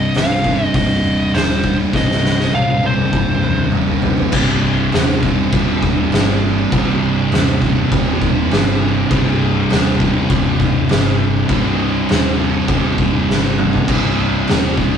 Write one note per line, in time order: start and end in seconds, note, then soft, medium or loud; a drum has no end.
0.00 0.46 C2 medium
0.00 0.43 G2 loud
0.00 0.44 C3 loud
0.00 0.17 D#5 loud
0.14 0.65 C1 medium
0.14 0.63 F5 loud
0.14 snare loud
0.14 open hi-hat medium
0.44 1.33 C2 medium
0.44 1.33 G2 medium
0.44 1.36 C3 medium
0.44 kick medium
0.63 0.75 D#5 loud
0.74 1.00 C1 loud
0.74 1.37 D#5 loud
0.74 kick loud
0.74 open hi-hat medium
1.03 1.29 D#1 medium
1.33 1.85 D#1 medium
1.33 1.93 C2 medium
1.33 1.93 G2 medium
1.33 1.96 C3 medium
1.33 1.76 C5 medium
1.33 snare loud
1.33 open hi-hat medium
1.64 kick medium
1.93 2.45 C1 medium
1.93 2.82 C2 loud
1.93 2.82 G2 medium
1.93 2.82 C3 medium
1.93 2.54 D#5 medium
1.93 kick loud
1.93 snare medium
2.11 snare medium
2.25 snare medium
2.40 snare medium
2.53 3.04 C1 medium
2.53 2.85 F5 medium
2.53 high tom medium
2.68 high tom medium
2.82 3.73 G2 medium
2.82 3.71 C3 medium
2.82 3.71 C5 medium
2.82 high tom medium
2.86 3.71 C2 medium
2.98 mid tom medium
3.13 3.39 C1 medium
3.13 kick loud
3.13 mid tom medium
3.28 mid tom medium
3.42 3.68 D#1 medium
3.42 mid tom medium
3.58 mid tom medium
3.72 4.24 D#1 medium
3.72 4.31 C2 medium
3.72 4.32 G2 medium
3.72 4.32 C3 medium
3.72 mid tom loud
3.87 floor tom medium
4.02 floor tom loud
4.17 floor tom medium
4.32 4.84 C1 loud
4.32 5.26 C2 loud
4.32 5.22 G2 loud
4.32 kick loud
4.32 crash loud
4.32 crash medium
4.36 5.23 C3 loud
4.92 5.44 D#1 medium
4.92 snare loud
4.92 crash medium
5.23 6.72 C2 medium
5.23 6.72 G2 medium
5.23 6.75 C3 medium
5.23 kick medium
5.52 5.78 D#1 loud
5.52 6.71 C2 medium
5.52 6.71 G2 medium
5.52 6.74 C3 loud
5.52 kick loud
5.52 crash medium
5.83 6.08 D#1 medium
5.83 kick medium
6.12 6.63 G1 medium
6.12 snare loud
6.12 crash medium
6.72 7.23 C1 loud
6.72 7.64 C2 medium
6.72 7.61 G2 loud
6.72 7.62 C3 loud
6.72 kick loud
6.72 crash medium
7.31 7.83 D#1 medium
7.31 snare loud
7.31 crash medium
7.62 9.10 C2 medium
7.62 9.10 G2 medium
7.62 9.13 C3 medium
7.62 kick medium
7.90 8.17 D#1 loud
7.90 9.10 C2 medium
7.90 9.09 G2 medium
7.90 9.13 C3 loud
7.90 kick loud
7.90 crash medium
8.21 8.47 D#1 medium
8.21 kick loud
8.51 9.02 G1 loud
8.51 snare loud
8.51 crash medium
9.11 9.62 C1 loud
9.11 10.02 C2 loud
9.11 9.99 G2 loud
9.11 9.99 C3 loud
9.11 kick loud
9.11 crash medium
9.70 10.22 D#1 loud
9.70 snare loud
9.70 crash medium
10.00 11.49 C2 medium
10.00 11.48 G2 medium
10.00 11.51 C3 medium
10.00 kick medium
10.29 10.56 D#1 loud
10.29 11.48 C2 medium
10.29 11.48 G2 medium
10.29 11.51 C3 medium
10.29 kick loud
10.29 crash medium
10.60 10.86 D#1 loud
10.60 kick medium
10.89 11.41 G1 medium
10.89 snare loud
10.89 crash medium
11.49 12.00 C1 loud
11.49 12.41 C2 loud
11.49 12.38 G2 loud
11.49 12.38 C3 loud
11.49 kick loud
11.49 crash medium
12.09 12.60 D#1 loud
12.09 snare loud
12.09 crash medium
12.39 13.88 C2 medium
12.39 13.87 G2 medium
12.39 13.90 C3 medium
12.68 12.94 D#1 loud
12.68 13.87 C2 medium
12.68 13.87 G2 medium
12.68 13.90 C3 loud
12.68 kick loud
12.68 crash medium
12.98 13.24 D#1 loud
12.98 kick medium
13.29 13.80 G1 medium
13.29 snare medium
13.58 mid tom loud
13.73 floor tom loud
13.88 14.39 C1 loud
13.88 14.80 C2 loud
13.88 14.76 G2 loud
13.88 14.78 C3 loud
13.88 kick loud
13.88 crash loud
14.48 14.98 D#1 medium
14.48 snare loud
14.48 crash medium
14.77 14.98 C2 medium
14.77 14.98 G2 medium
14.77 14.98 C3 medium
14.77 kick medium